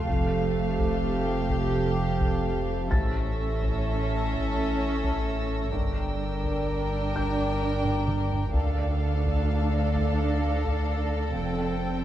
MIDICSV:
0, 0, Header, 1, 11, 480
1, 0, Start_track
1, 0, Key_signature, -1, "minor"
1, 0, Tempo, 947867
1, 36, Time_signature, 3, 2, 24, 8
1, 1956, Tempo, 936037
1, 6151, End_track
2, 0, Start_track
2, 0, Title_t, "Violin section"
2, 0, Program_c, 0, 48
2, 1473, Note_on_c, 0, 88, 38
2, 1476, Note_on_c, 0, 94, 38
2, 3615, Note_off_c, 0, 94, 0
2, 4094, Note_off_c, 0, 88, 0
2, 4361, Note_on_c, 0, 93, 41
2, 4851, Note_on_c, 0, 94, 38
2, 6151, Note_off_c, 0, 93, 0
2, 6151, Note_off_c, 0, 94, 0
2, 6151, End_track
3, 0, Start_track
3, 0, Title_t, "Felt piano"
3, 0, Program_c, 1, 0
3, 0, Control_c, 1, 64, 127
3, 0, Note_on_c, 1, 91, 51
3, 45, Control_c, 1, 64, 0
3, 121, Control_c, 1, 64, 127
3, 260, Note_off_c, 1, 91, 0
3, 1473, Note_on_c, 1, 93, 46
3, 1486, Control_c, 1, 64, 0
3, 1563, Control_c, 1, 64, 127
3, 2894, Note_off_c, 1, 93, 0
3, 2927, Control_c, 1, 64, 0
3, 3000, Control_c, 1, 64, 127
3, 3646, Note_on_c, 1, 91, 33
3, 4364, Control_c, 1, 64, 0
3, 4460, Control_c, 1, 64, 127
3, 5060, Note_off_c, 1, 91, 0
3, 5804, Control_c, 1, 64, 0
3, 5901, Control_c, 1, 64, 127
3, 6151, End_track
4, 0, Start_track
4, 0, Title_t, "Violin section"
4, 0, Program_c, 2, 48
4, 0, Note_on_c, 2, 77, 57
4, 1457, Note_off_c, 2, 77, 0
4, 1481, Note_on_c, 2, 76, 54
4, 2898, Note_off_c, 2, 76, 0
4, 2918, Note_on_c, 2, 79, 54
4, 4336, Note_off_c, 2, 79, 0
4, 4358, Note_on_c, 2, 77, 52
4, 5776, Note_off_c, 2, 77, 0
4, 5801, Note_on_c, 2, 79, 51
4, 6151, Note_off_c, 2, 79, 0
4, 6151, End_track
5, 0, Start_track
5, 0, Title_t, "Glass harmonica"
5, 0, Program_c, 3, 92
5, 0, Note_on_c, 3, 81, 43
5, 32, Note_on_c, 3, 67, 40
5, 35, Note_on_c, 3, 72, 34
5, 1462, Note_off_c, 3, 81, 0
5, 1473, Note_on_c, 3, 69, 37
5, 1475, Note_on_c, 3, 85, 37
5, 1476, Note_off_c, 3, 67, 0
5, 1477, Note_off_c, 3, 72, 0
5, 1477, Note_on_c, 3, 73, 39
5, 2895, Note_off_c, 3, 85, 0
5, 2915, Note_off_c, 3, 69, 0
5, 2916, Note_on_c, 3, 79, 35
5, 2917, Note_off_c, 3, 73, 0
5, 2917, Note_on_c, 3, 74, 36
5, 2918, Note_on_c, 3, 70, 35
5, 4348, Note_on_c, 3, 69, 41
5, 4353, Note_on_c, 3, 77, 42
5, 4355, Note_off_c, 3, 79, 0
5, 4357, Note_off_c, 3, 70, 0
5, 5794, Note_off_c, 3, 77, 0
5, 5795, Note_off_c, 3, 74, 0
5, 5797, Note_on_c, 3, 79, 43
5, 5802, Note_on_c, 3, 72, 38
5, 6151, Note_off_c, 3, 69, 0
5, 6151, Note_off_c, 3, 72, 0
5, 6151, Note_off_c, 3, 79, 0
5, 6151, End_track
6, 0, Start_track
6, 0, Title_t, "Violin section"
6, 0, Program_c, 4, 48
6, 43, Note_on_c, 4, 67, 57
6, 1461, Note_off_c, 4, 67, 0
6, 1480, Note_on_c, 4, 69, 55
6, 2898, Note_off_c, 4, 69, 0
6, 2916, Note_on_c, 4, 70, 55
6, 4335, Note_off_c, 4, 70, 0
6, 4363, Note_on_c, 4, 69, 48
6, 6151, Note_off_c, 4, 69, 0
6, 6151, End_track
7, 0, Start_track
7, 0, Title_t, "Viola section"
7, 0, Program_c, 5, 48
7, 0, Note_on_c, 5, 57, 59
7, 1455, Note_off_c, 5, 57, 0
7, 1480, Note_on_c, 5, 61, 59
7, 2897, Note_off_c, 5, 61, 0
7, 2923, Note_on_c, 5, 62, 57
7, 4338, Note_off_c, 5, 62, 0
7, 4357, Note_on_c, 5, 62, 50
7, 5775, Note_off_c, 5, 62, 0
7, 5799, Note_on_c, 5, 60, 46
7, 6151, Note_off_c, 5, 60, 0
7, 6151, End_track
8, 0, Start_track
8, 0, Title_t, "Cello section"
8, 0, Program_c, 6, 48
8, 36, Note_on_c, 6, 41, 51
8, 1478, Note_off_c, 6, 41, 0
8, 1481, Note_on_c, 6, 45, 51
8, 2914, Note_on_c, 6, 43, 55
8, 2919, Note_off_c, 6, 45, 0
8, 4334, Note_off_c, 6, 43, 0
8, 4358, Note_on_c, 6, 38, 56
8, 5775, Note_off_c, 6, 38, 0
8, 5799, Note_on_c, 6, 41, 55
8, 6151, Note_off_c, 6, 41, 0
8, 6151, End_track
9, 0, Start_track
9, 0, Title_t, "Double bass section"
9, 0, Program_c, 7, 48
9, 37, Note_on_c, 7, 29, 58
9, 1477, Note_on_c, 7, 33, 49
9, 1478, Note_off_c, 7, 29, 0
9, 2917, Note_off_c, 7, 33, 0
9, 2919, Note_on_c, 7, 31, 46
9, 4336, Note_off_c, 7, 31, 0
9, 4358, Note_on_c, 7, 38, 53
9, 5775, Note_off_c, 7, 38, 0
9, 5799, Note_on_c, 7, 29, 49
9, 6151, Note_off_c, 7, 29, 0
9, 6151, End_track
10, 0, Start_track
10, 0, Title_t, "Sub bass"
10, 0, Program_c, 8, 38
10, 38, Note_on_c, 8, 29, 69
10, 1478, Note_on_c, 8, 33, 70
10, 1485, Note_off_c, 8, 29, 0
10, 2908, Note_on_c, 8, 31, 72
10, 2916, Note_off_c, 8, 33, 0
10, 4363, Note_on_c, 8, 38, 70
10, 4371, Note_off_c, 8, 31, 0
10, 5798, Note_on_c, 8, 29, 69
10, 5806, Note_off_c, 8, 38, 0
10, 6151, Note_off_c, 8, 29, 0
10, 6151, End_track
11, 0, Start_track
11, 0, Title_t, "Taiko and cinematic ensemble drums"
11, 36, Note_on_c, 9, 41, 78
11, 87, Note_off_c, 9, 41, 0
11, 400, Note_on_c, 9, 41, 71
11, 451, Note_off_c, 9, 41, 0
11, 758, Note_on_c, 9, 41, 71
11, 809, Note_off_c, 9, 41, 0
11, 1118, Note_on_c, 9, 41, 65
11, 1169, Note_off_c, 9, 41, 0
11, 1477, Note_on_c, 9, 41, 89
11, 1528, Note_off_c, 9, 41, 0
11, 1836, Note_on_c, 9, 41, 69
11, 1886, Note_off_c, 9, 41, 0
11, 2194, Note_on_c, 9, 41, 64
11, 2245, Note_off_c, 9, 41, 0
11, 2557, Note_on_c, 9, 41, 69
11, 2609, Note_off_c, 9, 41, 0
11, 2913, Note_on_c, 9, 41, 83
11, 2965, Note_off_c, 9, 41, 0
11, 3274, Note_on_c, 9, 41, 71
11, 3326, Note_off_c, 9, 41, 0
11, 3637, Note_on_c, 9, 41, 59
11, 3688, Note_off_c, 9, 41, 0
11, 3997, Note_on_c, 9, 45, 69
11, 4048, Note_off_c, 9, 45, 0
11, 4117, Note_on_c, 9, 47, 84
11, 4169, Note_off_c, 9, 47, 0
11, 4237, Note_on_c, 9, 43, 63
11, 4288, Note_off_c, 9, 43, 0
11, 4355, Note_on_c, 9, 41, 75
11, 4406, Note_off_c, 9, 41, 0
11, 4715, Note_on_c, 9, 41, 71
11, 4766, Note_off_c, 9, 41, 0
11, 5075, Note_on_c, 9, 41, 62
11, 5127, Note_off_c, 9, 41, 0
11, 5437, Note_on_c, 9, 41, 66
11, 5489, Note_off_c, 9, 41, 0
11, 6151, End_track
0, 0, End_of_file